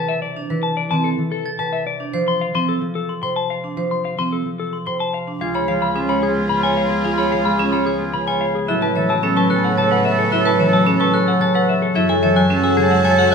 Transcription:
Already playing: C3 E3 B4 A5
0.09 E5
0.22 D5
0.36 D4
0.50 E3 B4
0.63 A5
0.77 D5
0.91 E3 C4 A5
1.04 A4
1.18 E3
1.32 A4
1.46 A6
1.59 C3 B4 A5
1.73 E5
1.87 D5
2.00 D4
2.13 F3 C5
2.28 C6
2.41 F5
2.54 F3 C4 C6
2.69 A4
2.81 F3
2.95 A4
3.09 C6
3.22 C3 C5 C6
3.36 A5
3.50 F5
3.64 D4
3.77 F3 C5
3.91 C6
4.05 F5
4.18 F3 C4 C6
4.33 A4
4.45 F3
4.60 A4
4.73 C6
4.86 C3 C5 C6
5.00 A5
5.14 F5
5.28 D4
5.41 C#2 G#3 F4 G#4 F5 G#6
5.55 C#5 B5
5.68 F3 F4 F5
5.82 G#3 B5 F6
5.95 C#4 F4 G#4
6.09 G#3 C#5 B5
6.23 F4 G#4 G#6
6.36 B3
6.49 C#3 B5
6.55 F4
6.63 C#5 G#5
6.77 F5
6.83 F4
6.90 G#4
7.04 G#3 F4 F5 G#6
7.12 F4
7.18 C#5 B5
7.32 F3 F5
7.40 F4
7.45 G#3 B5 F6
7.59 C#4 G#4
7.69 G#3 F4 B5
7.73 C#5
7.86 G#4 G#6
7.97 B3 F4
8.13 C#3 B5
8.26 F4 C#5 G#5
8.41 F5
8.55 G#4
8.68 A2 F#3 C#4 E4 A4 B4 E5 F#6
8.82 B4 A5
8.96 E3 A4 C#5 E5
9.09 F#3 A5 E6
9.23 B3 C#4 A4
9.36 F#3 B4 A5 C#6
9.50 C#3 A4 F#6
9.64 A3 F#5
9.77 C#3 C#5 A5 A6
9.82 A4
9.91 B4 F#5
10.05 E5
10.10 A4
10.19 A4
10.32 F#3 E4 E5 F#6
10.39 A4
10.45 B4 A5
10.59 E3 C#5 E5
10.68 A4
10.73 F#3 A5 E6
10.87 B3 C#4 A4
10.96 A4 B4 C#6
11.01 F#3 A5
11.14 C#3 A4 F#6
11.25 A3 A4 F#5
11.41 C#3 C#5 A5 A6
11.54 A4 B4 F#5
11.69 E5
11.82 A4
11.95 F#2 F#3 E4 F#4 A4 E5 A5 G#6
12.09 G#3 A4 G#5
12.22 E3 A4 C#5 E5
12.36 F#3 G#5 F#6
12.50 A3 C#4 G#4 A4
12.63 F#3 A4 G#5 E6
12.77 C#3 G#4 G#6
12.81 A4
12.90 G#3 F#5
13.04 C#3 C#5 G#5 A6
13.10 A4
13.18 A4 F#5
13.31 F#6

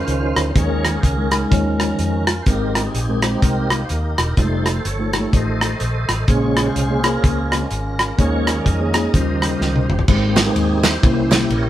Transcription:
Already playing: C#3 D#3 F3 C#4 D#4 F4 C5
0.08 C#2, closed hi-hat
0.36 D2, cross-stick, closed hi-hat
0.51 C5
0.55 D#2 D#3 F3 G#3 A#3 C#4 D#4 G#4 A#4 C#5, kick, closed hi-hat
0.85 cross-stick, closed hi-hat
1.00 C#2 C5, kick
1.04 C#4 A#4, closed hi-hat
1.17 G#3 C#4 D#4 A#4
1.31 G#3 C#4 D#4 A#4, cross-stick, closed hi-hat
1.50 D#2 D#3 F3 G#3 C#4 D#4 F4 C#5, kick, closed hi-hat
1.80 cross-stick, closed hi-hat
1.99 F2, closed hi-hat
2.27 F4, cross-stick, closed hi-hat
2.42 C3 G#3 A#3 C5
2.46 G#1 G#2 G#3 A#3 C4 D#4 G4 A#4, kick, closed hi-hat
2.75 cross-stick, closed hi-hat
2.86 C4 D#4 G#4
2.94 A#1, closed hi-hat
3.09 G#3 C4 G4 A#4
3.22 G#3 C4 G4 C5, cross-stick, closed hi-hat
3.42 C2 D#4 G4 A#4, kick, closed hi-hat
3.70 cross-stick, closed hi-hat
3.85 C5
3.89 D#2 D#4 G4 A#4, closed hi-hat
4.18 E1, cross-stick, closed hi-hat
4.37 F1 C3 D#3 F3 G3 G#3 A3 D#4 F4 A4 C5, kick, closed hi-hat
4.43 A3
4.66 cross-stick, closed hi-hat
4.85 G1 A4 C#5, closed hi-hat
4.99 A3 D#4 F4 C5
5.13 G3 D#4 F4 G4, cross-stick, closed hi-hat
5.19 A3
5.33 A1 A4 C5 D#5, kick, closed hi-hat
5.61 cross-stick, closed hi-hat
5.80 A#1, closed hi-hat
6.09 A1 D#5, cross-stick, closed hi-hat
6.28 A#1 A#2 C#3 G#3 A#3 C#4 F4 G#4 C5 C#5, kick, closed hi-hat
6.57 cross-stick, closed hi-hat
6.66 F4 G#4 C5
6.76 C2, closed hi-hat
6.90 A#3 C#4 G#4 C5
7.04 A#3 C#4 F4 G#4 A#4 C5, cross-stick, closed hi-hat
7.24 C#2, kick, closed hi-hat
7.51 C#3 G#3 C4, cross-stick, closed hi-hat
7.71 G#1, closed hi-hat
7.99 cross-stick, closed hi-hat
8.18 D#2 D#3 F3 G#3 A#3 C#4 D#4 G#4 A#4 C#5, kick, closed hi-hat
8.47 cross-stick, closed hi-hat
8.61 D5
8.66 F2 D#4 A#4 D#5, kick, closed hi-hat
8.80 A#3 D#4 G#4 C#5
8.94 A#3 D#4 G#4 C#5, cross-stick, closed hi-hat
9.14 D#2 C#3 D#3 F3 G3 C#4 F4 G4 C5, kick, closed hi-hat
9.42 cross-stick, closed hi-hat
9.61 C#2, snare
9.76 high tom
9.89 G1, mid tom
9.99 floor tom
10.08 G#1 G#2 G#3 A#3 C4 D#4 G4 C5, kick, crash
10.37 C4 D#4 G#4, snare, clap, ride
10.46 G#3 D#4 G4 B4
10.53 D#2 C5, ride
10.83 E4 G4 C5, snare, clap, ride
11.02 C2 C3 E3 A#3 C#4 E4 C5, kick, ride
11.32 snare, clap, ride
11.50 A#1 E4 A#4 C#5, ride

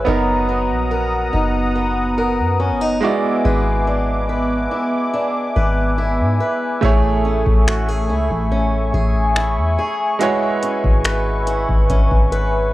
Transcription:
Already playing: C#4 E4
0.05 F#1 F#3 B3 D#4 A#4 F#5 A#5 D#6
0.49 B3
0.70 A#1
0.91 A#4
1.33 F#1 D#4
1.75 B3
2.18 A#4
2.39 F#2
2.60 C#4
2.71 F#1
2.81 D#4
3.01 G#3 E4 F#4 D5 E5 G#5 D6
3.45 G#1 G#3 B4
3.87 D4
4.29 B4
4.71 E4
5.14 D4
5.56 G#1 B4
5.98 E4
6.20 G#2
6.40 B4
6.81 A1 A3 E4 G#4 C#5 C#6, kick
7.25 C#4
7.46 A1, kick
7.67 F#4, finger snap
7.88 G#4
8.09 C#2 E4
8.31 A1, kick
8.52 C#4
8.93 A1 G#4, kick
9.36 E4, finger snap
9.57 E2
9.79 G#4
10.19 G#3 E4 F#4 B4 C#5, closed hi-hat
10.63 C#4, closed hi-hat
10.84 G#1, kick
11.04 B4, finger snap, closed hi-hat
11.47 E4, closed hi-hat
11.69 G#1, kick
11.90 G#1 C#4, kick, closed hi-hat
12.11 G#1, kick
12.32 B4, closed hi-hat

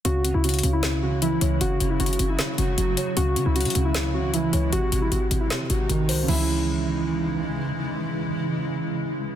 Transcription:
0.05 C#2 C#3 E3 G#3 E4 F#4, closed hi-hat
0.24 C#3, closed hi-hat
0.34 C#2 E4
0.44 C#3 F#4, closed hi-hat
0.49 closed hi-hat
0.54 closed hi-hat
0.59 closed hi-hat
0.63 C#2 C#3, closed hi-hat
0.73 E4
0.83 C#3, snare, closed hi-hat
1.03 C#3 F#4
1.22 E3 E4, closed hi-hat
1.41 C#2 C#5, closed hi-hat
1.61 F#1 C#3 F#3 A3 F#4, closed hi-hat
1.80 F#1 C#3, closed hi-hat
1.90 E4
2.00 F#1 C#3 F#4, closed hi-hat
2.06 closed hi-hat
2.13 closed hi-hat
2.19 F#1 C#3, closed hi-hat
2.29 E4
2.39 C#3, snare, closed hi-hat
2.58 F#1 C#3 F#4, closed hi-hat
2.78 F#1 F#3, closed hi-hat
2.97 C#5, closed hi-hat
3.16 C#2 C#3 E3 G#3 E4 F#4, closed hi-hat
3.36 C#3, closed hi-hat
3.46 C#2 E4
3.56 C#3 F#4, closed hi-hat
3.61 closed hi-hat
3.65 C#3, closed hi-hat
3.70 closed hi-hat
3.75 C#2 C#3, closed hi-hat
3.85 E4
3.94 C#3, snare, closed hi-hat
4.14 C#3 F#4
4.34 E3 E4, closed hi-hat
4.53 C#2 C#5, closed hi-hat
4.72 G#1 C3 D#3 D#4 F#4, closed hi-hat
4.92 G#1 C3, closed hi-hat
5.02 E4
5.11 G#1 C3 F#4, closed hi-hat
5.31 G#1 C3, closed hi-hat
5.41 E4
5.50 C3, snare, closed hi-hat
5.70 G#1 C3 F#4, closed hi-hat
5.89 G#1 D#3, closed hi-hat
6.09 C2 C5, open hi-hat
6.22 C#3
6.26 C#2 C#3 E3 G#3 E4, crash
6.34 C#4

